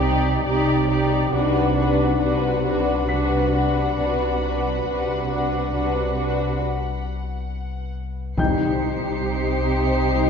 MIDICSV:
0, 0, Header, 1, 13, 480
1, 0, Start_track
1, 0, Tempo, 882353
1, 723, Time_signature, 4, 2, 24, 8
1, 5603, End_track
2, 0, Start_track
2, 0, Title_t, "Grand piano"
2, 0, Program_c, 0, 0
2, 0, Control_c, 0, 64, 127
2, 734, Control_c, 0, 64, 0
2, 828, Control_c, 0, 64, 127
2, 1679, Note_on_c, 0, 95, 27
2, 3099, Note_off_c, 0, 95, 0
2, 4559, Note_on_c, 0, 79, 27
2, 4565, Note_on_c, 0, 91, 37
2, 4573, Control_c, 0, 64, 0
2, 4648, Control_c, 0, 64, 127
2, 5603, Note_off_c, 0, 79, 0
2, 5603, Note_off_c, 0, 91, 0
2, 5603, End_track
3, 0, Start_track
3, 0, Title_t, "Violin section"
3, 0, Program_c, 1, 48
3, 722, Note_on_c, 1, 78, 40
3, 723, Note_on_c, 1, 83, 34
3, 3821, Note_off_c, 1, 83, 0
3, 4301, Note_off_c, 1, 78, 0
3, 4557, Note_on_c, 1, 96, 36
3, 4559, Note_on_c, 1, 97, 32
3, 5603, Note_off_c, 1, 96, 0
3, 5603, Note_off_c, 1, 97, 0
3, 5603, End_track
4, 0, Start_track
4, 0, Title_t, "Ambient pad"
4, 0, Program_c, 2, 92
4, 0, Note_on_c, 2, 63, 53
4, 0, Note_on_c, 2, 67, 49
4, 0, Note_on_c, 2, 74, 50
4, 703, Note_off_c, 2, 67, 0
4, 703, Note_off_c, 2, 74, 0
4, 704, Note_off_c, 2, 63, 0
4, 724, Note_on_c, 2, 74, 50
4, 724, Note_on_c, 2, 78, 52
4, 725, Note_on_c, 2, 71, 51
4, 2640, Note_off_c, 2, 74, 0
4, 2643, Note_off_c, 2, 71, 0
4, 2643, Note_off_c, 2, 78, 0
4, 2646, Note_on_c, 2, 74, 46
4, 2649, Note_on_c, 2, 71, 51
4, 2651, Note_on_c, 2, 78, 48
4, 3583, Note_off_c, 2, 74, 0
4, 3584, Note_off_c, 2, 71, 0
4, 3585, Note_off_c, 2, 78, 0
4, 4558, Note_on_c, 2, 67, 49
4, 4558, Note_on_c, 2, 75, 47
4, 4560, Note_on_c, 2, 79, 57
4, 5603, Note_off_c, 2, 67, 0
4, 5603, Note_off_c, 2, 75, 0
4, 5603, Note_off_c, 2, 79, 0
4, 5603, End_track
5, 0, Start_track
5, 0, Title_t, "Violin section"
5, 0, Program_c, 3, 48
5, 0, Note_on_c, 3, 74, 44
5, 237, Note_off_c, 3, 74, 0
5, 247, Note_on_c, 3, 74, 49
5, 480, Note_off_c, 3, 74, 0
5, 487, Note_on_c, 3, 74, 41
5, 720, Note_off_c, 3, 74, 0
5, 733, Note_on_c, 3, 71, 51
5, 961, Note_off_c, 3, 71, 0
5, 967, Note_on_c, 3, 71, 41
5, 1200, Note_off_c, 3, 71, 0
5, 1212, Note_on_c, 3, 71, 41
5, 1440, Note_off_c, 3, 71, 0
5, 1447, Note_on_c, 3, 71, 39
5, 1680, Note_off_c, 3, 71, 0
5, 1692, Note_on_c, 3, 71, 37
5, 1923, Note_off_c, 3, 71, 0
5, 1930, Note_on_c, 3, 71, 38
5, 2162, Note_off_c, 3, 71, 0
5, 2176, Note_on_c, 3, 71, 36
5, 2405, Note_off_c, 3, 71, 0
5, 2413, Note_on_c, 3, 71, 33
5, 2637, Note_off_c, 3, 71, 0
5, 2643, Note_on_c, 3, 71, 38
5, 2878, Note_off_c, 3, 71, 0
5, 2894, Note_on_c, 3, 71, 32
5, 3121, Note_off_c, 3, 71, 0
5, 3128, Note_on_c, 3, 71, 35
5, 3358, Note_off_c, 3, 71, 0
5, 3365, Note_on_c, 3, 71, 30
5, 3599, Note_off_c, 3, 71, 0
5, 4563, Note_on_c, 3, 72, 47
5, 5603, Note_off_c, 3, 72, 0
5, 5603, End_track
6, 0, Start_track
6, 0, Title_t, "Violin section"
6, 0, Program_c, 4, 48
6, 4, Note_on_c, 4, 67, 50
6, 239, Note_off_c, 4, 67, 0
6, 246, Note_on_c, 4, 67, 50
6, 477, Note_off_c, 4, 67, 0
6, 484, Note_on_c, 4, 67, 43
6, 719, Note_off_c, 4, 67, 0
6, 728, Note_on_c, 4, 66, 41
6, 953, Note_off_c, 4, 66, 0
6, 960, Note_on_c, 4, 66, 37
6, 1186, Note_off_c, 4, 66, 0
6, 1192, Note_on_c, 4, 66, 40
6, 1427, Note_off_c, 4, 66, 0
6, 1433, Note_on_c, 4, 66, 41
6, 1673, Note_off_c, 4, 66, 0
6, 1680, Note_on_c, 4, 66, 46
6, 1910, Note_off_c, 4, 66, 0
6, 1917, Note_on_c, 4, 66, 35
6, 2151, Note_off_c, 4, 66, 0
6, 2158, Note_on_c, 4, 66, 36
6, 2386, Note_off_c, 4, 66, 0
6, 2392, Note_on_c, 4, 66, 34
6, 2622, Note_off_c, 4, 66, 0
6, 2628, Note_on_c, 4, 66, 34
6, 2868, Note_off_c, 4, 66, 0
6, 2875, Note_on_c, 4, 66, 26
6, 3105, Note_off_c, 4, 66, 0
6, 3111, Note_on_c, 4, 66, 33
6, 3345, Note_off_c, 4, 66, 0
6, 3352, Note_on_c, 4, 66, 35
6, 3592, Note_off_c, 4, 66, 0
6, 4560, Note_on_c, 4, 67, 50
6, 5603, Note_off_c, 4, 67, 0
6, 5603, End_track
7, 0, Start_track
7, 0, Title_t, "Viola section"
7, 0, Program_c, 5, 48
7, 0, Note_on_c, 5, 63, 43
7, 233, Note_off_c, 5, 63, 0
7, 239, Note_on_c, 5, 63, 51
7, 474, Note_off_c, 5, 63, 0
7, 480, Note_on_c, 5, 63, 43
7, 717, Note_off_c, 5, 63, 0
7, 721, Note_on_c, 5, 62, 51
7, 951, Note_off_c, 5, 62, 0
7, 958, Note_on_c, 5, 62, 43
7, 1193, Note_off_c, 5, 62, 0
7, 1200, Note_on_c, 5, 62, 40
7, 1429, Note_off_c, 5, 62, 0
7, 1435, Note_on_c, 5, 62, 40
7, 1671, Note_off_c, 5, 62, 0
7, 1678, Note_on_c, 5, 62, 45
7, 1916, Note_off_c, 5, 62, 0
7, 1922, Note_on_c, 5, 62, 38
7, 2158, Note_off_c, 5, 62, 0
7, 2166, Note_on_c, 5, 62, 37
7, 2400, Note_off_c, 5, 62, 0
7, 2407, Note_on_c, 5, 62, 35
7, 2631, Note_off_c, 5, 62, 0
7, 2637, Note_on_c, 5, 62, 34
7, 2869, Note_off_c, 5, 62, 0
7, 2876, Note_on_c, 5, 62, 36
7, 3115, Note_off_c, 5, 62, 0
7, 3121, Note_on_c, 5, 62, 35
7, 3355, Note_off_c, 5, 62, 0
7, 3362, Note_on_c, 5, 62, 31
7, 3597, Note_off_c, 5, 62, 0
7, 4562, Note_on_c, 5, 63, 47
7, 5603, Note_off_c, 5, 63, 0
7, 5603, End_track
8, 0, Start_track
8, 0, Title_t, "French horn section"
8, 0, Program_c, 6, 60
8, 4560, Note_on_c, 6, 55, 36
8, 4564, Note_on_c, 6, 63, 40
8, 4741, Note_off_c, 6, 55, 0
8, 4743, Note_off_c, 6, 63, 0
8, 5523, Note_on_c, 6, 63, 45
8, 5524, Note_on_c, 6, 55, 42
8, 5603, Note_off_c, 6, 55, 0
8, 5603, Note_off_c, 6, 63, 0
8, 5603, End_track
9, 0, Start_track
9, 0, Title_t, "Cello section"
9, 0, Program_c, 7, 48
9, 0, Note_on_c, 7, 48, 50
9, 185, Note_off_c, 7, 48, 0
9, 245, Note_on_c, 7, 48, 42
9, 668, Note_off_c, 7, 48, 0
9, 726, Note_on_c, 7, 48, 51
9, 1148, Note_off_c, 7, 48, 0
9, 1201, Note_on_c, 7, 48, 51
9, 1625, Note_off_c, 7, 48, 0
9, 1681, Note_on_c, 7, 48, 43
9, 2105, Note_off_c, 7, 48, 0
9, 2159, Note_on_c, 7, 48, 34
9, 2584, Note_off_c, 7, 48, 0
9, 2644, Note_on_c, 7, 48, 38
9, 3067, Note_off_c, 7, 48, 0
9, 3123, Note_on_c, 7, 48, 41
9, 3546, Note_off_c, 7, 48, 0
9, 4562, Note_on_c, 7, 48, 39
9, 5603, Note_off_c, 7, 48, 0
9, 5603, End_track
10, 0, Start_track
10, 0, Title_t, "Timpani"
10, 0, Program_c, 8, 47
10, 4558, Note_on_c, 8, 48, 67
10, 5259, Note_off_c, 8, 48, 0
10, 5603, End_track
11, 0, Start_track
11, 0, Title_t, "Double bass section"
11, 0, Program_c, 10, 48
11, 0, Note_on_c, 10, 36, 65
11, 181, Note_off_c, 10, 36, 0
11, 236, Note_on_c, 10, 36, 58
11, 663, Note_off_c, 10, 36, 0
11, 717, Note_on_c, 10, 36, 52
11, 1143, Note_off_c, 10, 36, 0
11, 1192, Note_on_c, 10, 36, 50
11, 1621, Note_off_c, 10, 36, 0
11, 1674, Note_on_c, 10, 36, 55
11, 2102, Note_off_c, 10, 36, 0
11, 2155, Note_on_c, 10, 36, 44
11, 2582, Note_off_c, 10, 36, 0
11, 2638, Note_on_c, 10, 36, 39
11, 3064, Note_off_c, 10, 36, 0
11, 3117, Note_on_c, 10, 36, 37
11, 3543, Note_off_c, 10, 36, 0
11, 4556, Note_on_c, 10, 36, 45
11, 5603, Note_off_c, 10, 36, 0
11, 5603, End_track
12, 0, Start_track
12, 0, Title_t, "Sub bass"
12, 0, Program_c, 11, 38
12, 0, Note_on_c, 11, 36, 72
12, 698, Note_off_c, 11, 36, 0
12, 724, Note_on_c, 11, 36, 62
12, 2621, Note_off_c, 11, 36, 0
12, 2644, Note_on_c, 11, 36, 62
12, 4542, Note_off_c, 11, 36, 0
12, 4556, Note_on_c, 11, 36, 66
12, 5603, Note_off_c, 11, 36, 0
12, 5603, End_track
13, 0, Start_track
13, 0, Title_t, "Taiko and cinematic ensemble drums"
13, 4558, Note_on_c, 9, 41, 77
13, 4612, Note_off_c, 9, 41, 0
13, 5603, End_track
0, 0, End_of_file